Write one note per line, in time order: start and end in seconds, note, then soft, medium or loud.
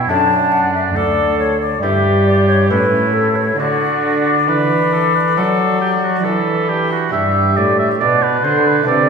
0.00 0.11 E4 medium
0.09 0.94 F#2 medium
0.09 0.92 F#2 soft
0.09 1.78 A3 soft
0.09 0.98 D4 soft
0.09 1.79 D4 soft
0.09 1.79 A4 soft
0.09 0.53 A5 medium
0.52 0.74 F#5 medium
0.74 0.80 E5 medium
0.95 1.81 D2 medium
0.95 1.78 D2 soft
0.95 1.55 A4 medium
0.95 1.38 D5 medium
1.39 1.60 C#5 medium
1.60 1.81 D5 medium
1.82 2.72 G2 medium
1.82 2.66 G2 soft
1.82 2.66 B3 soft
1.82 2.66 E4 soft
1.82 2.66 G4 medium
1.82 2.67 G4 soft
1.82 2.26 E5 medium
2.24 2.47 D5 medium
2.47 2.69 C#5 medium
2.69 3.55 A2 soft
2.69 3.58 A2 soft
2.69 3.55 C#4 soft
2.69 3.57 E4 soft
2.69 3.55 E4 soft
2.69 3.56 G4 soft
2.69 3.15 B4 medium
3.13 3.37 A4 medium
3.36 3.60 C#5 medium
3.58 4.50 D3 medium
3.58 4.44 D3 soft
3.58 4.38 F#4 soft
3.58 6.69 D5 medium
4.48 5.38 E3 soft
4.48 5.33 E3 soft
4.48 4.95 B4 medium
4.93 5.15 A4 soft
5.15 5.36 B4 soft
5.37 6.25 F#3 soft
5.37 6.21 F#3 soft
5.37 6.21 A3 soft
5.37 7.09 D4 soft
5.37 7.10 F#4 soft
5.37 5.80 A4 medium
5.81 5.91 G4 soft
6.03 6.26 F#4 soft
6.25 7.10 E3 soft
6.25 7.12 E3 soft
6.25 6.70 A4 soft
6.69 6.91 G4 soft
6.92 7.12 F#4 soft
7.09 7.54 B3 soft
7.09 7.54 D4 soft
7.09 8.83 G4 soft
7.09 7.58 E5 medium
7.14 7.53 G2 soft
7.14 7.59 G2 medium
7.14 7.97 G4 medium
7.57 7.97 A2 soft
7.57 8.03 A2 soft
7.57 7.79 D5 medium
7.79 7.89 E5 medium
8.00 8.40 B2 soft
8.00 8.44 B2 soft
8.00 8.87 B4 medium
8.00 8.25 D5 medium
8.23 8.46 B4 medium
8.44 8.84 D3 soft
8.44 8.87 D3 soft
8.44 8.68 C5 medium
8.67 8.86 B4 medium
8.83 9.09 A3 soft
8.83 9.09 E4 soft
8.83 9.09 A4 soft
8.83 9.09 D5 medium
8.88 9.09 C3 soft
8.88 9.09 A4 medium